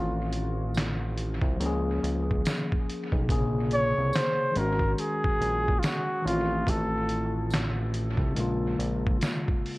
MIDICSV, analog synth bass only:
0, 0, Header, 1, 2, 480
1, 0, Start_track
1, 0, Key_signature, -5, "minor"
1, 0, Tempo, 845070
1, 1869, Time_signature, 4, 2, 24, 8
1, 5557, End_track
2, 0, Start_track
2, 0, Title_t, "Analog synth bass"
2, 0, Program_c, 0, 38
2, 0, Note_on_c, 0, 33, 105
2, 797, Note_off_c, 0, 33, 0
2, 807, Note_on_c, 0, 36, 90
2, 897, Note_off_c, 0, 36, 0
2, 911, Note_on_c, 0, 37, 102
2, 1134, Note_off_c, 0, 37, 0
2, 1154, Note_on_c, 0, 37, 91
2, 1377, Note_off_c, 0, 37, 0
2, 1775, Note_on_c, 0, 35, 94
2, 1861, Note_off_c, 0, 35, 0
2, 1870, Note_on_c, 0, 34, 107
2, 2237, Note_off_c, 0, 34, 0
2, 2261, Note_on_c, 0, 36, 84
2, 2344, Note_off_c, 0, 36, 0
2, 2592, Note_on_c, 0, 32, 108
2, 2815, Note_off_c, 0, 32, 0
2, 3072, Note_on_c, 0, 34, 96
2, 3295, Note_off_c, 0, 34, 0
2, 3551, Note_on_c, 0, 33, 104
2, 3775, Note_off_c, 0, 33, 0
2, 3789, Note_on_c, 0, 33, 103
2, 4636, Note_off_c, 0, 33, 0
2, 4644, Note_on_c, 0, 36, 82
2, 4735, Note_off_c, 0, 36, 0
2, 4753, Note_on_c, 0, 34, 99
2, 4976, Note_off_c, 0, 34, 0
2, 4991, Note_on_c, 0, 34, 97
2, 5215, Note_off_c, 0, 34, 0
2, 5557, End_track
0, 0, End_of_file